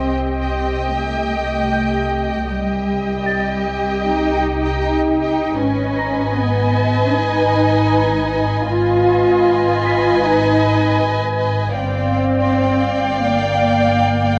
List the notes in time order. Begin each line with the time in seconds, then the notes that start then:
Already playing: C2 C4 G4 D#5 G5
0.96 A3
1.73 G6
2.50 C2 G3 G4 D#5 G5
3.26 A6
4.05 D#4
4.82 D#4
5.59 G#1 C#4 B4 D#5 G#5
5.99 A#5 A#6
6.37 B3
7.14 D#4
8.68 G#1 F4 B4 D#5 G#5
9.86 B6
10.23 D#4
11.76 G1 C4 D5 F5 G5
13.31 A#3